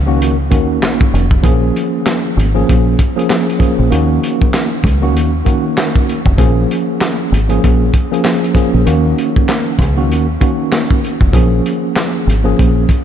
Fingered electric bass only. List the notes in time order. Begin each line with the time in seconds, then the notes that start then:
Already playing: C#2
0.52 D#2
0.83 A#1
1.14 F1
1.44 A#1
2.37 G#1
2.70 A#1
3.79 A#1
3.92 D#2
4.84 C#2
5.16 D#2
6.26 F1
6.39 A#1
7.32 G#1
7.64 A#1
8.74 A#1
8.87 D#2
9.79 C#2
10.10 D#2
11.21 F1
11.34 A#1
12.27 G#1
12.60 A#1